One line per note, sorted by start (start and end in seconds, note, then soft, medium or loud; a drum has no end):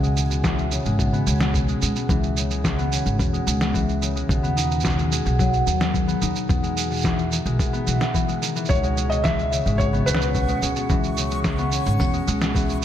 0.00 0.78 C#2 medium
0.00 0.29 B2 medium
0.00 0.15 G#3 medium
0.00 1.12 B3 medium
0.00 1.26 C#4 medium
0.00 shaker soft
0.16 0.84 G#3 medium
0.16 shaker medium
0.30 0.77 B2 medium
0.30 shaker soft
0.44 0.77 E3 medium
0.44 kick medium
0.44 snare medium
0.44 shaker soft
0.59 shaker soft
0.71 1.04 C#3 medium
0.71 shaker medium
0.85 1.20 G#1 medium
0.85 1.67 G#3 medium
0.85 shaker soft
0.99 1.53 B2 medium
0.99 kick medium
0.99 shaker soft
1.13 2.78 B3 medium
1.13 shaker soft
1.27 1.74 C#2 medium
1.27 2.91 C#4 medium
1.27 shaker medium
1.41 snare medium
1.41 shaker soft
1.54 1.95 B2 medium
1.54 kick medium
1.54 shaker soft
1.68 1.81 G#3 medium
1.68 shaker soft
1.82 1.91 C#2 medium
1.82 2.50 G#3 medium
1.82 shaker medium
1.96 2.42 B2 medium
1.96 shaker soft
2.09 2.98 C#2 medium
2.09 2.42 E3 medium
2.09 kick loud
2.09 shaker soft
2.23 shaker soft
2.37 2.69 C#3 medium
2.37 shaker medium
2.51 3.32 G#3 medium
2.51 shaker soft
2.64 3.18 B2 medium
2.64 kick medium
2.64 snare medium
2.64 shaker soft
2.78 4.43 B3 medium
2.78 shaker soft
2.92 5.82 C#4 medium
2.92 shaker medium
3.06 3.15 G#1 medium
3.06 shaker soft
3.19 3.38 E2 loud
3.19 3.60 B2 medium
3.19 kick loud
3.19 shaker soft
3.33 3.46 G#3 medium
3.33 shaker soft
3.47 4.22 C#2 medium
3.47 4.14 G#3 medium
3.47 shaker medium
3.61 4.07 B2 medium
3.61 snare medium
3.61 shaker soft
3.74 4.07 E3 medium
3.74 kick medium
3.74 shaker soft
3.89 shaker soft
4.02 4.34 C#3 medium
4.02 shaker medium
4.16 4.34 G#3 medium
4.16 shaker soft
4.29 5.18 D#2 medium
4.29 4.83 B2 medium
4.29 kick loud
4.29 shaker soft
4.43 6.07 B3 medium
4.43 shaker soft
4.56 6.21 D#4 medium
4.56 shaker medium
4.71 shaker soft
4.80 5.24 B2 medium
4.80 shaker soft
4.84 kick loud
4.84 snare medium
4.84 shaker soft
4.89 shaker soft
4.97 5.10 G#3 medium
4.97 shaker soft
5.11 5.72 G#3 medium
5.11 shaker medium
5.25 5.60 B1 medium
5.25 5.72 B2 medium
5.25 shaker soft
5.39 5.72 F#3 loud
5.39 kick medium
5.39 shaker soft
5.53 shaker soft
5.66 6.15 D#2 medium
5.66 6.00 D#3 medium
5.66 shaker medium
5.80 6.55 G#3 medium
5.80 snare medium
5.80 shaker soft
5.94 6.48 B2 medium
5.94 kick medium
5.94 shaker soft
6.08 7.73 B3 medium
6.08 shaker soft
6.21 6.31 D#2 medium
6.21 7.10 D#4 medium
6.21 shaker medium
6.36 shaker soft
6.49 7.39 E2 medium
6.49 6.89 B2 medium
6.49 kick loud
6.49 shaker soft
6.63 6.75 G#3 medium
6.63 shaker soft
6.77 7.37 G#3 medium
6.77 shaker medium
6.90 7.37 B2 medium
6.90 shaker soft
6.93 shaker soft
6.96 shaker soft
6.98 shaker soft
7.01 shaker soft
7.03 7.37 E3 medium
7.03 kick medium
7.03 snare medium
7.03 shaker soft
7.05 shaker soft
7.19 shaker soft
7.32 7.65 D#3 medium
7.32 shaker medium
7.46 7.55 B1 medium
7.46 8.27 G#3 medium
7.46 shaker soft
7.59 8.47 B2 medium
7.59 kick loud
7.59 shaker soft
7.73 9.93 B3 medium
7.73 shaker soft
7.87 7.96 B1 medium
7.87 8.13 E3 medium
7.87 shaker medium
8.01 snare medium
8.01 shaker soft
8.14 8.47 E3 medium
8.14 kick medium
8.14 shaker soft
8.28 8.47 G#3 medium
8.28 shaker soft
8.42 8.75 D#3 medium
8.42 shaker medium
8.56 8.75 E3 medium
8.56 shaker soft
8.65 9.10 B2 medium
8.65 9.08 C#5 medium
8.65 shaker soft
8.70 9.59 C#2 medium
8.70 12.85 C#6 medium
8.70 kick medium
8.70 shaker soft
8.83 8.96 G#3 medium
8.83 shaker soft
8.97 9.65 G#3 medium
8.97 shaker medium
9.10 9.57 B2 medium
9.10 9.25 D#5 medium
9.10 shaker soft
9.24 9.57 E3 medium
9.24 9.81 E5 loud
9.24 kick medium
9.24 snare medium
9.24 shaker soft
9.39 shaker soft
9.52 9.85 C#3 medium
9.52 shaker medium
9.66 10.00 G#1 medium
9.66 10.47 G#3 medium
9.66 shaker soft
9.78 10.33 B2 medium
9.78 10.05 C#5 medium
9.78 kick loud
9.78 shaker soft
9.93 11.58 B3 loud
9.93 shaker soft
10.06 10.55 C#2 loud
10.06 11.72 C#4 medium
10.06 10.58 B4 medium
10.06 shaker medium
10.15 snare medium
10.21 shaker soft
10.34 10.75 B2 medium
10.34 kick medium
10.34 shaker soft
10.48 10.61 G#3 medium
10.48 shaker soft
10.62 10.72 C#2 medium
10.62 11.30 G#3 medium
10.62 shaker medium
10.76 11.23 B2 medium
10.76 shaker soft
10.90 11.79 C#2 medium
10.90 11.23 E3 loud
10.90 kick medium
10.90 shaker soft
11.04 shaker soft
11.17 11.50 C#3 medium
11.17 shaker medium
11.31 12.12 G#3 medium
11.31 shaker soft
11.44 11.99 B2 medium
11.44 kick medium
11.44 snare medium
11.44 shaker soft
11.58 12.85 B3 medium
11.58 shaker soft
11.72 12.85 C#4 medium
11.72 shaker medium
11.86 11.95 G#1 medium
11.86 shaker soft
12.00 12.18 E2 loud
12.00 12.40 B2 medium
12.00 kick medium
12.00 shaker soft
12.13 12.26 G#3 medium
12.13 shaker soft
12.27 12.85 C#2 medium
12.27 12.85 G#3 medium
12.27 shaker medium
12.41 12.85 B2 medium
12.41 snare medium
12.41 shaker soft
12.55 12.85 E3 loud
12.55 kick medium
12.55 shaker soft
12.69 shaker soft